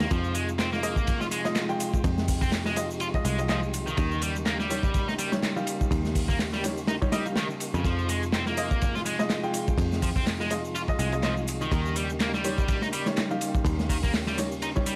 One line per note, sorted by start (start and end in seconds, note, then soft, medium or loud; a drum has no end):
0.00 7.81 D#4 medium
0.00 snare loud
0.00 ride medium
0.00 swell medium
0.00 shaker soft
0.10 1.77 F2 loud
0.10 3.94 C3 medium
0.10 0.34 F3 medium
0.10 3.94 F3 medium
0.10 3.94 G#3 medium
0.10 2.02 F4 medium
0.10 kick loud
0.10 ride medium
0.10 shaker soft
0.24 shaker soft
0.34 0.48 G#3 medium
0.34 open hi-hat medium
0.34 ride medium
0.34 shaker medium
0.49 shaker soft
0.59 0.69 C4 medium
0.59 snare loud
0.59 clap loud
0.59 ride medium
0.59 shaker soft
0.72 1.20 A#3 medium
0.72 snare medium
0.72 shaker soft
0.83 0.93 G#3 medium
0.83 0.93 F4 medium
0.83 0.93 D#5 medium
0.83 open hi-hat medium
0.83 ride medium
0.83 shaker medium
0.96 kick loud
0.96 shaker soft
1.07 kick loud
1.07 ride loud
1.07 shaker soft
1.21 1.26 F4 medium
1.21 snare soft
1.21 shaker soft
1.31 1.44 G#3 medium
1.31 open hi-hat medium
1.31 ride medium
1.31 shaker medium
1.45 1.66 G#3 medium
1.45 1.66 F4 medium
1.45 1.66 D#5 medium
1.45 snare medium
1.45 shaker soft
1.55 snare loud
1.55 clap loud
1.55 ride medium
1.55 shaker soft
1.69 2.74 G#3 medium
1.69 2.74 F4 medium
1.69 2.74 G5 loud
1.69 shaker soft
1.80 open hi-hat medium
1.80 ride medium
1.80 shaker medium
1.94 kick medium
1.94 shaker soft
2.04 3.21 F2 loud
2.04 7.81 G4 medium
2.04 kick loud
2.04 ride medium
2.04 shaker soft
2.18 snare medium
2.18 shaker soft
2.28 kick loud
2.28 open hi-hat medium
2.28 shaker medium
2.42 2.50 C4 loud
2.42 kick loud
2.42 shaker soft
2.52 snare loud
2.52 clap loud
2.52 ride medium
2.52 shaker soft
2.65 2.76 G#3 medium
2.65 snare medium
2.65 shaker soft
2.76 2.86 G#3 medium
2.76 2.86 F4 medium
2.76 2.86 D#5 medium
2.76 snare soft
2.76 open hi-hat medium
2.76 ride medium
2.76 shaker medium
2.91 shaker soft
3.00 3.07 F4 medium
3.00 ride medium
3.00 shaker soft
3.14 3.35 G#3 medium
3.14 3.35 F4 medium
3.14 3.35 D#5 loud
3.14 kick loud
3.14 shaker soft
3.25 3.94 C2 loud
3.25 3.38 G#3 medium
3.25 open hi-hat medium
3.25 ride medium
3.25 shaker medium
3.39 3.46 G#3 medium
3.39 3.46 F4 medium
3.39 3.46 D#5 medium
3.39 ride soft
3.39 shaker soft
3.49 3.59 F3 medium
3.49 3.64 G#3 medium
3.49 3.64 F4 medium
3.49 3.64 D#5 loud
3.49 snare loud
3.49 clap loud
3.49 ride medium
3.49 shaker soft
3.63 shaker soft
3.74 open hi-hat medium
3.74 ride medium
3.74 shaker medium
3.87 3.97 D#3 medium
3.87 ride soft
3.87 shaker soft
3.97 5.63 D#2 loud
3.97 7.81 C#3 medium
3.97 4.21 D#3 medium
3.97 7.81 G3 medium
3.97 7.81 A#3 medium
3.97 kick loud
3.97 ride medium
3.97 shaker soft
4.12 shaker soft
4.22 4.35 G3 medium
4.22 open hi-hat medium
4.22 ride medium
4.22 shaker medium
4.36 shaker soft
4.46 4.56 A#3 medium
4.46 snare loud
4.46 clap loud
4.46 ride medium
4.46 shaker soft
4.60 5.07 G3 medium
4.60 snare medium
4.60 shaker soft
4.70 4.80 G3 medium
4.70 4.80 D#4 medium
4.70 4.80 C#5 medium
4.70 open hi-hat medium
4.70 ride medium
4.70 shaker medium
4.83 kick loud
4.83 shaker soft
4.94 kick loud
4.94 ride medium
4.94 shaker soft
5.08 5.13 D#4 medium
5.08 snare soft
5.08 shaker soft
5.18 5.32 G3 medium
5.18 open hi-hat medium
5.18 ride medium
5.18 shaker medium
5.32 5.53 G3 medium
5.32 5.53 D#4 medium
5.32 5.53 C#5 loud
5.32 snare medium
5.32 shaker soft
5.43 snare loud
5.43 clap loud
5.43 ride medium
5.43 shaker soft
5.56 6.61 G3 loud
5.56 6.61 D#4 medium
5.56 6.61 F5 loud
5.56 shaker soft
5.67 open hi-hat medium
5.67 ride medium
5.67 shaker medium
5.81 kick medium
5.81 shaker soft
5.91 7.57 D#2 loud
5.91 kick loud
5.91 ride loud
5.91 shaker soft
6.05 snare medium
6.05 shaker soft
6.15 kick medium
6.15 open hi-hat medium
6.15 shaker medium
6.29 6.37 A#3 loud
6.29 kick loud
6.29 shaker soft
6.39 snare loud
6.39 clap loud
6.39 ride loud
6.39 shaker soft
6.53 6.63 G3 medium
6.53 snare soft
6.53 shaker soft
6.64 6.73 G3 medium
6.64 6.73 D#4 medium
6.64 6.73 C#5 medium
6.64 snare soft
6.64 open hi-hat medium
6.64 ride medium
6.64 shaker medium
6.78 shaker soft
6.87 6.94 D#4 medium
6.87 snare loud
6.87 ride medium
6.87 shaker soft
7.02 7.10 G3 medium
7.02 7.10 D#4 medium
7.02 7.10 C#5 loud
7.02 kick loud
7.02 shaker soft
7.12 7.22 G3 loud
7.12 7.25 G3 medium
7.12 7.22 D#4 medium
7.12 7.22 D#5 loud
7.12 snare loud
7.12 open hi-hat medium
7.12 ride medium
7.12 shaker medium
7.25 7.33 G3 medium
7.25 7.33 D#4 medium
7.25 7.33 F5 medium
7.25 ride soft
7.25 shaker soft
7.36 7.47 D#3 medium
7.36 snare loud
7.36 clap loud
7.36 ride medium
7.36 shaker soft
7.50 shaker soft
7.60 open hi-hat medium
7.60 ride medium
7.60 shaker medium
7.74 7.83 F2 loud
7.74 7.84 C#3 medium
7.74 ride soft
7.74 shaker soft
7.84 9.50 F2 loud
7.84 11.68 C3 medium
7.84 11.68 F3 medium
7.84 8.08 F3 medium
7.84 11.68 G#3 medium
7.84 13.61 D#4 medium
7.84 11.68 F4 medium
7.84 kick loud
7.84 ride medium
7.84 shaker soft
7.99 shaker soft
8.09 8.22 G#3 medium
8.09 open hi-hat medium
8.09 ride medium
8.09 shaker medium
8.23 shaker soft
8.32 8.43 C4 medium
8.32 snare loud
8.32 clap loud
8.32 ride medium
8.32 shaker soft
8.46 8.94 A#3 medium
8.46 snare medium
8.46 shaker soft
8.57 8.67 G#3 medium
8.57 8.67 F4 medium
8.57 8.67 D#5 medium
8.57 open hi-hat medium
8.57 ride medium
8.57 shaker medium
8.71 kick loud
8.71 shaker soft
8.81 kick loud
8.81 ride medium
8.81 shaker soft
8.95 9.00 F4 medium
8.95 snare soft
8.95 shaker soft
9.06 9.19 G#3 medium
9.06 open hi-hat medium
9.06 ride medium
9.06 shaker medium
9.19 9.40 G#3 medium
9.19 9.40 F4 medium
9.19 9.40 D#5 medium
9.19 snare medium
9.19 shaker soft
9.30 snare loud
9.30 clap loud
9.30 ride medium
9.30 shaker soft
9.43 10.48 G#3 loud
9.43 10.48 F4 medium
9.43 10.48 G5 loud
9.43 shaker soft
9.54 open hi-hat medium
9.54 ride medium
9.54 shaker medium
9.68 kick loud
9.68 shaker soft
9.78 10.95 F2 loud
9.78 kick loud
9.78 ride loud
9.78 shaker soft
9.92 snare medium
9.92 shaker soft
10.02 10.09 F3 loud
10.02 kick medium
10.02 open hi-hat medium
10.02 shaker medium
10.16 10.24 C4 loud
10.16 kick loud
10.16 shaker soft
10.27 snare loud
10.27 clap loud
10.27 ride medium
10.27 shaker soft
10.40 10.50 G#3 medium
10.40 snare medium
10.40 shaker soft
10.50 10.60 G#3 medium
10.50 10.60 F4 medium
10.50 10.60 D#5 medium
10.50 snare soft
10.50 open hi-hat medium
10.50 ride medium
10.50 shaker medium
10.65 shaker soft
10.75 10.81 F4 medium
10.75 ride medium
10.75 shaker soft
10.88 11.10 G#3 medium
10.88 11.10 F4 medium
10.88 11.10 D#5 loud
10.88 kick loud
10.88 shaker soft
10.99 11.68 C2 loud
10.99 11.12 G#3 medium
10.99 open hi-hat medium
10.99 ride medium
10.99 shaker medium
11.12 11.20 G#3 medium
11.12 11.20 F4 medium
11.12 11.20 D#5 medium
11.12 ride soft
11.12 shaker soft
11.23 11.34 F3 medium
11.23 11.38 G#3 medium
11.23 11.38 F4 medium
11.23 11.38 D#5 medium
11.23 snare loud
11.23 clap loud
11.23 ride medium
11.23 shaker soft
11.37 shaker soft
11.48 open hi-hat medium
11.48 ride medium
11.48 shaker medium
11.61 11.71 D#3 medium
11.61 ride soft
11.61 shaker soft
11.72 13.37 D#2 loud
11.72 14.96 C#3 medium
11.72 11.95 D#3 medium
11.72 14.96 G3 medium
11.72 14.96 A#3 medium
11.72 14.96 G4 medium
11.72 kick loud
11.72 ride loud
11.72 shaker soft
11.85 shaker soft
11.96 12.09 G3 medium
11.96 open hi-hat medium
11.96 ride medium
11.96 shaker medium
12.10 shaker soft
12.20 12.30 A#3 medium
12.20 snare loud
12.20 clap loud
12.20 ride medium
12.20 shaker soft
12.34 12.81 G3 medium
12.34 snare soft
12.34 shaker soft
12.44 12.54 G3 medium
12.44 12.54 D#4 medium
12.44 12.54 C#5 medium
12.44 open hi-hat medium
12.44 ride medium
12.44 shaker medium
12.58 kick medium
12.58 shaker soft
12.68 kick loud
12.68 ride loud
12.68 shaker soft
12.82 12.87 D#4 medium
12.82 snare soft
12.82 shaker soft
12.93 13.06 G3 medium
12.93 open hi-hat medium
12.93 ride medium
12.93 shaker medium
13.06 13.27 G3 medium
13.06 13.27 D#4 medium
13.06 13.27 C#5 loud
13.06 snare medium
13.06 shaker soft
13.17 snare loud
13.17 clap loud
13.17 ride medium
13.17 shaker soft
13.31 14.36 G3 medium
13.31 14.36 D#4 medium
13.31 14.36 F5 loud
13.31 shaker soft
13.41 open hi-hat medium
13.41 ride medium
13.41 shaker medium
13.55 kick loud
13.55 shaker soft
13.65 14.96 D#2 loud
13.65 14.96 C#4 medium
13.65 kick loud
13.65 ride loud
13.65 shaker soft
13.79 snare medium
13.79 shaker soft
13.89 13.96 D#3 loud
13.89 kick medium
13.89 open hi-hat medium
13.89 shaker medium
14.03 14.11 A#3 loud
14.03 kick medium
14.03 shaker soft
14.14 snare loud
14.14 clap loud
14.14 ride medium
14.14 shaker soft
14.27 14.38 G3 medium
14.27 snare medium
14.27 shaker soft
14.38 14.48 G3 medium
14.38 14.48 D#4 medium
14.38 14.48 C#5 medium
14.38 snare soft
14.38 open hi-hat medium
14.38 ride medium
14.38 shaker medium
14.52 shaker soft
14.62 14.68 D#4 medium
14.62 ride medium
14.62 shaker soft
14.76 14.96 G3 medium
14.76 14.96 D#4 medium
14.76 14.96 C#5 loud
14.76 kick medium
14.76 shaker soft
14.86 14.96 G3 medium
14.86 open hi-hat medium
14.86 ride medium
14.86 shaker medium